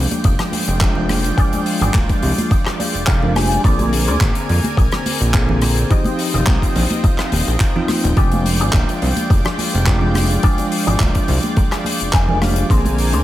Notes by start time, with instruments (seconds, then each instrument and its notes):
Already playing: tine electric piano F3 G#3 D4 G5, analog synth pad G#3 F4 D5 G5
0.11 closed hi-hat, high conga
0.24 analog synth bass F1, muted clean electric guitar stroke, kick, closed hi-hat
0.39 muted clean electric guitar stroke, cross-stick, closed hi-hat, muted conga
0.52 muted clean electric guitar stroke, open hi-hat, high conga
0.67 analog synth bass F1, closed hi-hat
0.81 tine electric piano F3 G#3 D4 G5, kick, clap, closed hi-hat
0.95 low conga
1.09 cross-stick, open hi-hat, high conga
1.24 closed hi-hat
1.37 tine electric piano F3 G#3 D4 G5, clean electric guitar F4 G4 G#4 D5, kick, closed hi-hat
1.53 closed hi-hat, muted conga, high conga
1.66 open hi-hat
1.81 analog synth bass G#1, clean electric guitar F4 G4 G#4 D5, closed hi-hat, low conga
1.94 analog synth bass D1, kick, clap, closed hi-hat, high conga
2.09 muted clean electric guitar stroke, kick, closed hi-hat
2.23 analog synth bass C2, open hi-hat, low conga
2.38 closed hi-hat, high conga
2.51 muted clean electric guitar stroke, kick, closed hi-hat, muted conga
2.66 muted clean electric guitar stroke, cross-stick, clap, closed hi-hat
2.79 clean electric guitar D5, muted clean electric guitar stroke, open hi-hat, high conga
2.94 analog synth bass F1, closed hi-hat, muted conga
3.07 analog synth bass F1, clean electric guitar F5, kick, clap, closed hi-hat
3.22 tine electric piano F3 G#3 D4 A#4, low conga
3.36 tine electric piano F3 G#3 D4 G4, clean electric guitar G#5, cross-stick, open hi-hat, high conga
3.52 closed hi-hat
3.63 analog synth bass A#1, tine electric piano D3 A#3 C4 G#4, analog synth pad C4 A#4 G#5, clean electric guitar G#4 A#4 C5 D5, kick, closed hi-hat
3.79 closed hi-hat, muted conga, high conga
3.93 open hi-hat
4.07 analog synth bass D2, clean electric guitar G#4 A#4 C5 D5, closed hi-hat
4.21 analog synth bass G#1, kick, clap, closed hi-hat, high conga
4.35 muted clean electric guitar stroke, closed hi-hat
4.49 analog synth bass F2, open hi-hat
4.64 closed hi-hat, high conga
4.77 analog synth bass A#1, muted clean electric guitar stroke, kick, closed hi-hat
4.92 muted clean electric guitar stroke, cross-stick, closed hi-hat, muted conga
5.06 muted clean electric guitar stroke, open hi-hat, high conga
5.21 analog synth bass A#1, closed hi-hat
5.34 tine electric piano D3 A#3 C4 G#4, kick, clap, closed hi-hat
5.49 low conga
5.61 cross-stick, open hi-hat, high conga
5.77 closed hi-hat
5.90 tine electric piano F3 C4 D#4 G4, clean electric guitar F4 G4 C5 D#5, analog synth pad F4 D#5 G5, kick, closed hi-hat
6.04 closed hi-hat, muted conga, high conga
6.19 open hi-hat
6.34 analog synth bass D#1, clean electric guitar F4 G4 C5 D#5, closed hi-hat, low conga
6.46 analog synth bass C2, kick, clap, closed hi-hat, high conga
6.62 muted clean electric guitar stroke, kick, closed hi-hat
6.75 analog synth bass A#1, open hi-hat, low conga
6.90 closed hi-hat, high conga
7.04 muted clean electric guitar stroke, kick, closed hi-hat, muted conga
7.18 muted clean electric guitar stroke, cross-stick, clap, closed hi-hat
7.32 analog synth bass D#1, muted clean electric guitar stroke, open hi-hat, high conga
7.47 analog synth bass A#1, closed hi-hat, muted conga
7.60 kick, clap, closed hi-hat
7.75 tine electric piano F3 C4 D#4 F4, low conga
7.88 cross-stick, open hi-hat, high conga
8.04 analog synth bass D#1, closed hi-hat
8.16 analog synth bass F1, tine electric piano F3 G#3 D4 G5, analog synth pad G#3 F4 D5, clean electric guitar F4 G4 G#4 D5, kick, closed hi-hat
8.32 closed hi-hat, muted conga, high conga
8.46 open hi-hat
8.60 analog synth bass G#1, clean electric guitar F4 G4 G#4 D5, closed hi-hat
8.73 analog synth bass D1, kick, clap, closed hi-hat, high conga
8.89 muted clean electric guitar stroke, closed hi-hat
9.02 analog synth bass C2, open hi-hat
9.16 closed hi-hat, high conga
9.30 analog synth bass F1, muted clean electric guitar stroke, kick, closed hi-hat
9.45 muted clean electric guitar stroke, cross-stick, closed hi-hat, muted conga
9.58 muted clean electric guitar stroke, open hi-hat, high conga
9.74 analog synth bass F1, closed hi-hat
9.86 tine electric piano F3 G#3 D4 G5, kick, clap, closed hi-hat
10.01 low conga
10.14 cross-stick, open hi-hat, high conga
10.30 closed hi-hat
10.43 tine electric piano F3 G#3 D4 G5, clean electric guitar F4 G4 G#4 D5, kick, closed hi-hat
10.58 closed hi-hat, muted conga, high conga
10.72 open hi-hat
10.87 analog synth bass G#1, clean electric guitar F4 G4 G#4 D5, closed hi-hat, low conga
11.00 analog synth bass D1, kick, clap, closed hi-hat, high conga
11.15 muted clean electric guitar stroke, kick, closed hi-hat
11.28 analog synth bass C2, open hi-hat, low conga
11.43 closed hi-hat, high conga
11.56 muted clean electric guitar stroke, kick, closed hi-hat, muted conga
11.72 muted clean electric guitar stroke, cross-stick, clap, closed hi-hat
11.84 muted clean electric guitar stroke, open hi-hat, high conga
12.00 analog synth bass F1, closed hi-hat, muted conga
12.13 analog synth bass F1, clean electric guitar G#5, kick, clap, closed hi-hat
12.28 tine electric piano F3 G#3 D4 A#4, low conga
12.41 tine electric piano F3 G#3 D4 G4, clean electric guitar F5, cross-stick, open hi-hat, high conga
12.56 closed hi-hat
12.69 analog synth bass A#1, tine electric piano D3 A#3 C4 G#4, analog synth pad C4 A#4 G#5, clean electric guitar D4 G#4 A#4 C5, kick, closed hi-hat
12.85 closed hi-hat, muted conga, high conga
12.98 open hi-hat
13.13 analog synth bass D2, clean electric guitar D4 G#4 A#4 C5, closed hi-hat